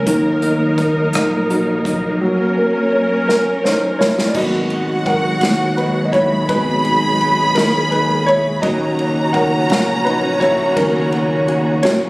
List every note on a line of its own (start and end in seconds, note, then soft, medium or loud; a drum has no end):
0.00 4.31 F#3 medium
0.00 2.17 A#4 medium
0.07 1.10 D#2 medium
0.07 2.17 D#3 medium
0.07 4.32 A#3 medium
0.07 2.19 D#4 medium
0.07 kick loud
0.07 closed hi-hat medium
0.42 1.13 D#4 medium
0.42 closed hi-hat soft
0.78 2.17 A#4 medium
0.78 kick medium
0.78 closed hi-hat soft
1.13 2.17 A#1 medium
1.13 1.84 D#4 medium
1.13 cross-stick medium
1.13 closed hi-hat medium
1.50 2.19 F#4 soft
1.50 closed hi-hat medium
1.85 2.20 D#4 medium
1.85 kick medium
1.85 closed hi-hat soft
2.20 4.31 F#3 medium
2.20 4.33 C#4 medium
2.20 4.33 A#4 medium
2.57 3.26 A#4 medium
2.92 3.63 C#5 medium
3.28 3.62 C#4 medium
3.28 3.98 A#4 medium
3.28 snare medium
3.64 3.98 D#4 medium
3.64 3.97 C5 medium
3.64 3.97 C#5 medium
3.64 snare medium
3.99 4.27 E4 medium
3.99 4.34 A#4 medium
3.99 4.29 C#5 medium
3.99 snare medium
4.19 snare medium
4.27 4.35 D5 medium
4.35 5.38 G#1 medium
4.35 8.59 B2 medium
4.35 8.59 F#3 medium
4.35 5.39 F#3 soft
4.35 8.59 G#3 medium
4.35 5.39 A#3 soft
4.35 5.39 B3 medium
4.35 6.47 F#4 medium
4.35 5.04 F#4 medium
4.35 5.09 D#5 medium
4.35 6.09 F#5 loud
4.35 kick loud
4.35 crash loud
4.70 ride soft
5.06 5.74 A#4 medium
5.06 5.80 F#5 medium
5.06 kick medium
5.06 ride soft
5.41 6.45 D#2 medium
5.41 snare loud
5.41 ride medium
5.77 6.05 D#4 medium
5.77 6.07 B4 medium
5.77 ride soft
6.05 6.13 D#5 medium
6.12 6.47 E4 medium
6.12 6.46 C#5 medium
6.12 8.59 B5 loud
6.12 kick medium
6.12 ride soft
6.48 7.52 G#1 medium
6.48 6.97 F#3 medium
6.48 6.97 G#3 soft
6.48 6.97 B3 medium
6.48 7.53 D#4 medium
6.48 8.60 G#4 medium
6.48 7.52 B4 medium
6.48 kick loud
6.48 ride medium
6.85 ride soft
7.21 ride soft
7.55 8.59 D#2 medium
7.55 7.90 D#4 medium
7.55 7.92 A#4 medium
7.55 snare loud
7.55 ride medium
7.91 8.25 D#4 medium
7.91 8.28 B4 medium
7.91 ride soft
8.26 8.61 E4 medium
8.26 8.64 C#5 medium
8.26 ride soft
8.62 9.66 D#2 loud
8.62 12.10 A#2 medium
8.62 10.73 A#2 medium
8.62 12.10 C#3 medium
8.62 9.68 F#3 medium
8.62 12.10 C#4 medium
8.62 9.68 C#4 medium
8.62 12.10 F#4 medium
8.62 9.31 F#4 medium
8.62 9.36 D#5 medium
8.62 12.10 A#5 loud
8.62 kick loud
8.62 ride medium
8.99 ride soft
9.33 10.02 A#4 medium
9.33 10.07 F#5 medium
9.33 kick medium
9.33 ride soft
9.69 10.73 A#1 medium
9.69 10.02 F#3 soft
9.69 10.02 A#3 soft
9.69 10.02 C#4 medium
9.69 snare loud
9.69 ride medium
10.04 10.39 D#4 medium
10.04 10.42 B4 medium
10.04 ride soft
10.40 10.50 E4 medium
10.40 10.48 C#5 medium
10.40 kick medium
10.40 ride soft
10.76 11.80 D#2 medium
10.76 11.24 F#3 medium
10.76 11.24 A#3 medium
10.76 11.25 C#4 medium
10.76 11.79 A#4 medium
10.76 kick loud
10.76 ride medium
11.12 ride soft
11.48 ride soft
11.83 12.10 A#1 medium
11.83 12.10 F#3 soft
11.83 12.10 A#3 soft
11.83 12.10 C#4 medium
11.83 12.10 F#4 medium
11.83 12.10 C#5 medium
11.83 snare loud
11.83 ride medium